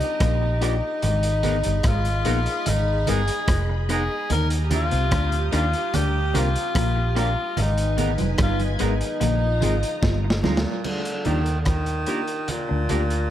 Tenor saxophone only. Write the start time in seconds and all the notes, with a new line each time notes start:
Already playing: D#4
0.63 D#4
1.87 F4
2.68 D#4
3.09 G#4
3.90 G#4
4.32 A#4
4.73 F4
5.55 F4
5.95 G4
6.37 F4
7.18 F4
7.60 D#4
8.43 F4
8.83 D#4
10.44 A#2
10.85 D3
11.26 D#3
11.61 D3
11.68 D#3
12.50 A#2